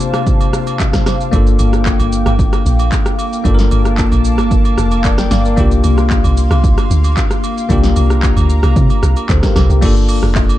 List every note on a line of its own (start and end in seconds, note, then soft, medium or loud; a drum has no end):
0.00 1.28 C3 medium
0.00 1.29 A#3 medium
0.00 1.29 D4 medium
0.00 1.30 F4 medium
0.00 1.30 G4 medium
0.00 1.29 C5 medium
0.00 5.54 F5 medium
0.00 1.31 A5 medium
0.00 1.29 D6 medium
0.00 shaker medium
0.14 cross-stick loud
0.14 high agogo medium
0.14 shaker soft
0.27 kick loud
0.27 shaker medium
0.41 high agogo medium
0.41 shaker soft
0.53 cross-stick medium
0.53 shaker medium
0.67 high agogo medium
0.67 shaker medium
0.80 kick medium
0.80 clap medium
0.80 low woodblock medium
0.80 shaker medium
0.93 kick medium
0.93 cross-stick medium
0.93 snare medium
0.93 shaker medium
1.06 cross-stick medium
1.06 snare medium
1.06 high agogo medium
1.06 shaker medium
1.20 shaker medium
1.32 1.58 G1 loud
1.32 3.41 A#3 medium
1.32 9.78 A#3 medium
1.32 3.41 D4 medium
1.32 3.42 F4 medium
1.32 3.43 G5 medium
1.32 9.78 D6 medium
1.32 kick loud
1.32 high agogo medium
1.32 shaker medium
1.36 3.43 A4 medium
1.47 shaker medium
1.59 1.97 G1 loud
1.59 high agogo medium
1.59 shaker medium
1.73 cross-stick medium
1.73 shaker medium
1.86 kick medium
1.86 clap medium
1.86 shaker medium
2.00 2.25 G1 medium
2.00 high agogo medium
2.00 shaker medium
2.12 shaker medium
2.26 2.51 G1 loud
2.26 cross-stick loud
2.26 high agogo medium
2.26 shaker soft
2.39 kick loud
2.39 shaker medium
2.53 cross-stick medium
2.53 high agogo medium
2.53 shaker soft
2.66 2.91 A#1 loud
2.66 shaker medium
2.79 high agogo medium
2.79 shaker medium
2.92 kick medium
2.92 clap medium
2.92 shaker medium
3.06 cross-stick loud
3.06 shaker medium
3.19 high agogo medium
3.19 shaker medium
3.33 shaker soft
3.44 3.70 G1 loud
3.44 5.53 A#3 medium
3.44 5.54 D4 medium
3.44 5.54 F4 medium
3.44 5.55 A5 medium
3.44 kick loud
3.44 high agogo medium
3.44 shaker medium
3.48 3.53 A4 medium
3.54 5.05 A#4 medium
3.59 snare medium
3.59 shaker medium
3.71 4.10 G1 loud
3.71 high agogo medium
3.71 shaker medium
3.85 cross-stick medium
3.85 shaker medium
3.98 kick medium
3.98 clap medium
3.98 shaker medium
4.12 4.40 A#1 medium
4.12 high agogo medium
4.12 shaker medium
4.25 shaker medium
4.38 4.64 G1 medium
4.38 cross-stick medium
4.38 high agogo medium
4.38 shaker soft
4.51 kick loud
4.51 shaker medium
4.65 high agogo medium
4.65 shaker soft
4.78 5.28 F1 medium
4.78 cross-stick medium
4.78 shaker medium
4.91 high agogo medium
4.91 shaker medium
5.04 5.18 A#4 medium
5.04 5.18 D5 medium
5.04 kick medium
5.04 clap medium
5.04 shaker medium
5.18 5.31 G5 medium
5.18 cross-stick medium
5.18 snare medium
5.18 shaker medium
5.31 5.56 G1 medium
5.31 5.44 D5 medium
5.31 5.45 F5 medium
5.31 snare medium
5.31 high agogo medium
5.31 shaker medium
5.45 5.71 A#4 medium
5.45 5.70 D5 medium
5.45 shaker medium
5.56 5.82 C2 loud
5.56 7.65 A#3 medium
5.56 7.66 D4 medium
5.56 7.67 F4 medium
5.56 9.78 F5 medium
5.56 7.68 C6 medium
5.56 kick loud
5.56 high agogo medium
5.56 shaker medium
5.60 7.67 G4 medium
5.71 shaker medium
5.84 6.22 C2 loud
5.84 high agogo medium
5.84 shaker medium
5.98 cross-stick medium
5.98 shaker medium
6.10 kick loud
6.10 clap medium
6.10 shaker medium
6.24 6.49 C2 medium
6.24 high agogo medium
6.24 shaker medium
6.37 shaker medium
6.51 6.76 C2 loud
6.51 cross-stick loud
6.51 high agogo medium
6.51 shaker soft
6.64 kick loud
6.64 shaker medium
6.78 cross-stick medium
6.78 high agogo medium
6.78 shaker soft
6.90 7.15 D2 loud
6.90 shaker medium
7.04 high agogo medium
7.04 shaker medium
7.17 kick medium
7.17 clap medium
7.17 shaker medium
7.31 cross-stick medium
7.31 shaker medium
7.44 high agogo medium
7.44 shaker medium
7.58 shaker medium
7.69 7.95 C2 loud
7.69 9.78 A#3 medium
7.69 9.78 D4 medium
7.69 9.79 F4 medium
7.69 9.80 A#5 medium
7.69 kick loud
7.69 high agogo medium
7.69 shaker medium
7.73 9.27 G4 medium
7.83 snare medium
7.83 shaker medium
7.96 8.34 C2 loud
7.96 high agogo medium
7.96 shaker medium
8.10 cross-stick medium
8.10 shaker medium
8.23 kick loud
8.23 clap medium
8.23 shaker medium
8.37 8.62 D2 loud
8.37 high agogo medium
8.37 shaker medium
8.50 shaker medium
8.63 8.75 C2 medium
8.63 cross-stick loud
8.63 high agogo medium
8.63 shaker soft
8.76 8.89 C3 loud
8.76 kick loud
8.76 shaker medium
8.90 high agogo medium
8.90 shaker soft
9.03 9.16 C2 medium
9.03 cross-stick loud
9.03 shaker medium
9.16 high agogo medium
9.16 shaker medium
9.29 9.42 D2 loud
9.29 9.43 A4 medium
9.29 9.43 C5 medium
9.29 kick medium
9.29 clap medium
9.29 shaker medium
9.43 9.69 G4 medium
9.43 9.69 A#4 medium
9.43 kick loud
9.43 cross-stick medium
9.43 snare medium
9.43 shaker medium
9.56 9.69 C2 loud
9.56 cross-stick medium
9.56 snare medium
9.56 high agogo medium
9.56 shaker medium
9.69 9.81 C2 medium
9.69 9.95 G4 medium
9.69 shaker medium
9.81 10.20 G1 loud
9.81 10.59 A#3 medium
9.81 10.59 D4 medium
9.81 10.59 F4 medium
9.81 kick loud
9.81 crash loud
9.81 high agogo medium
9.81 shaker medium
9.85 10.59 A4 medium
9.96 shaker medium
10.09 open hi-hat medium
10.09 high agogo medium
10.09 shaker medium
10.23 10.59 F1 medium
10.23 cross-stick medium
10.23 shaker medium
10.35 kick medium
10.35 clap medium
10.35 low woodblock medium
10.35 shaker medium
10.49 high agogo medium
10.49 shaker medium